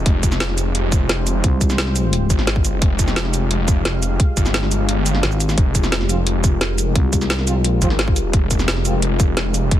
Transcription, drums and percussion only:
0.06 kick, closed hi-hat
0.23 kick, closed hi-hat, shaker
0.32 snare, shaker
0.40 snare, closed hi-hat
0.49 snare
0.58 closed hi-hat, shaker
0.75 closed hi-hat
0.92 kick, closed hi-hat, shaker
1.09 snare, closed hi-hat
1.27 closed hi-hat, shaker
1.44 kick, closed hi-hat
1.61 kick, closed hi-hat, shaker
1.70 snare, shaker
1.78 snare, closed hi-hat
1.87 snare
1.96 closed hi-hat, shaker
2.13 closed hi-hat
2.30 kick, closed hi-hat, shaker
2.39 snare
2.47 snare, closed hi-hat
2.56 kick
2.65 closed hi-hat, shaker
2.82 kick, closed hi-hat
2.99 kick, closed hi-hat, shaker
3.08 snare, shaker
3.16 snare, closed hi-hat
3.25 snare
3.34 closed hi-hat, shaker
3.51 closed hi-hat
3.68 kick, closed hi-hat, shaker
3.85 snare, closed hi-hat
4.02 closed hi-hat, shaker
4.20 kick, closed hi-hat
4.37 kick, closed hi-hat, shaker
4.46 snare, shaker
4.54 snare, closed hi-hat
4.63 snare
4.71 closed hi-hat, shaker
4.89 closed hi-hat
5.06 closed hi-hat, shaker
5.15 snare
5.23 snare, closed hi-hat
5.32 shaker
5.40 closed hi-hat, shaker
5.49 snare, shaker
5.58 kick, closed hi-hat
5.75 kick, closed hi-hat, shaker
5.84 snare, shaker
5.92 snare, closed hi-hat
6.01 snare
6.09 closed hi-hat, shaker
6.27 closed hi-hat
6.44 kick, closed hi-hat, shaker
6.61 snare, closed hi-hat
6.78 closed hi-hat, shaker
6.96 kick, closed hi-hat
7.13 kick, closed hi-hat, shaker
7.21 snare, shaker
7.30 snare, closed hi-hat
7.39 snare
7.47 closed hi-hat, shaker
7.64 closed hi-hat
7.82 kick, closed hi-hat, shaker
7.90 snare
7.99 snare, closed hi-hat
8.08 kick
8.16 closed hi-hat, shaker
8.33 kick, closed hi-hat
8.51 kick, closed hi-hat, shaker
8.59 snare, shaker
8.68 snare, closed hi-hat
8.77 snare
8.85 closed hi-hat, shaker
9.02 closed hi-hat
9.20 kick, closed hi-hat, shaker
9.37 snare, closed hi-hat
9.54 closed hi-hat, shaker
9.71 kick, closed hi-hat

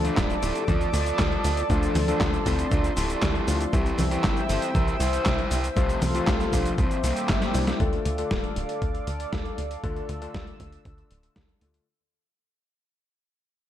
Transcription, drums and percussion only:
0.05 closed hi-hat, cabasa
0.17 kick, snare, clap, closed hi-hat, cabasa
0.30 closed hi-hat, cabasa
0.43 open hi-hat, cabasa
0.55 closed hi-hat, cabasa
0.68 kick, closed hi-hat, high conga, cabasa
0.81 closed hi-hat, cabasa
0.94 open hi-hat, cabasa
1.06 closed hi-hat, cabasa
1.19 kick, snare, clap, closed hi-hat, cabasa
1.32 closed hi-hat
1.44 open hi-hat, cabasa
1.57 closed hi-hat, cabasa
1.70 kick, closed hi-hat, cabasa
1.83 closed hi-hat, cabasa
1.95 open hi-hat, high conga, cabasa
2.08 closed hi-hat, cabasa
2.21 kick, snare, clap, closed hi-hat, cabasa
2.33 closed hi-hat, cabasa
2.46 kick, open hi-hat, cabasa
2.59 closed hi-hat, cabasa
2.71 kick, closed hi-hat, cabasa
2.84 closed hi-hat, cabasa
2.97 open hi-hat, cabasa
3.10 closed hi-hat, cabasa
3.22 kick, snare, clap, closed hi-hat, cabasa
3.35 closed hi-hat
3.48 open hi-hat, cabasa
3.61 closed hi-hat, cabasa
3.73 kick, closed hi-hat, cabasa
3.86 closed hi-hat, cabasa
3.99 open hi-hat, high conga, cabasa
4.11 closed hi-hat, cabasa
4.24 kick, snare, clap, closed hi-hat, cabasa
4.37 closed hi-hat, cabasa
4.49 open hi-hat, cabasa
4.62 closed hi-hat, cabasa
4.75 kick, closed hi-hat, high conga, cabasa
4.88 closed hi-hat, cabasa
5.00 open hi-hat, cabasa
5.13 closed hi-hat, cabasa
5.26 kick, snare, clap, closed hi-hat, cabasa
5.39 closed hi-hat
5.51 open hi-hat, cabasa
5.64 closed hi-hat, cabasa
5.77 kick, closed hi-hat, cabasa
5.89 closed hi-hat, cabasa
6.02 open hi-hat, high conga, cabasa
6.15 closed hi-hat, cabasa
6.27 kick, snare, clap, closed hi-hat, cabasa
6.40 snare, closed hi-hat, cabasa
6.53 kick, open hi-hat, cabasa
6.66 closed hi-hat, cabasa
6.78 kick, closed hi-hat, cabasa
6.91 closed hi-hat, cabasa
7.04 open hi-hat, cabasa
7.16 closed hi-hat, cabasa
7.29 kick, snare, clap, closed hi-hat, cabasa
7.42 snare, closed hi-hat, cabasa
7.54 open hi-hat, cabasa
7.67 snare, closed hi-hat, cabasa
7.80 kick, closed hi-hat
7.93 closed hi-hat
8.05 closed hi-hat
8.18 closed hi-hat
8.31 kick, snare, closed hi-hat
8.44 closed hi-hat
8.56 closed hi-hat
8.69 closed hi-hat
8.82 kick, closed hi-hat
8.95 closed hi-hat
9.07 closed hi-hat
9.20 closed hi-hat
9.33 kick, snare, closed hi-hat
9.45 closed hi-hat
9.58 closed hi-hat
9.71 closed hi-hat
9.84 kick, closed hi-hat
9.96 closed hi-hat
10.09 closed hi-hat
10.22 closed hi-hat
10.34 kick, snare, closed hi-hat
10.47 closed hi-hat
10.60 kick, closed hi-hat
10.72 closed hi-hat
10.85 kick, closed hi-hat
10.98 closed hi-hat
11.11 closed hi-hat
11.23 closed hi-hat
11.36 kick, snare, closed hi-hat
11.49 closed hi-hat
11.61 closed hi-hat
11.74 closed hi-hat

